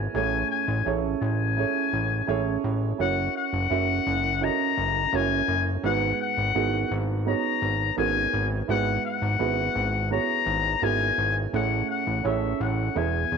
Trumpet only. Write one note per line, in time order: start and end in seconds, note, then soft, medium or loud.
0.15 0.48 G#5 loud
0.51 0.92 G#5 medium
1.22 2.60 G#5 loud
3.01 3.34 F#5 loud
3.37 4.46 F#5 loud
4.44 5.17 A#5 loud
5.16 5.68 G#5 loud
5.86 6.18 F#5 loud
6.21 6.97 F#5 loud
7.28 7.95 A#5 loud
7.99 8.48 G#5 loud
8.70 9.03 F#5 loud
9.06 10.08 F#5 loud
10.12 10.85 A#5 loud
10.84 11.37 G#5 loud
11.55 11.88 F#5 loud
11.90 12.28 F#5 medium
12.26 12.63 E5 medium
12.62 12.99 F#5 medium
12.98 13.38 G#5 medium